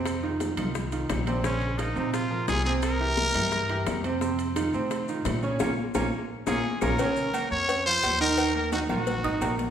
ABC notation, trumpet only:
X:1
M:4/4
L:1/8
Q:1/4=173
K:Bbm
V:1 name="Trumpet"
z8 | D2 E2 F2 A A | B6- B z | z8 |
z4 z A2 B- | B3 d2 c2 B- | B B G G4 z |]